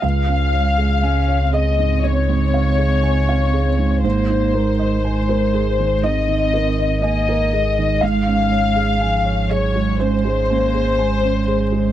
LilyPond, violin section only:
\new Staff \with { instrumentName = "Violin section" } { \time 4/4 \key des \major \tempo 4 = 60 f''4. ees''8 des''2 | c''2 ees''4 ees''4 | f''4. des''8 c''2 | }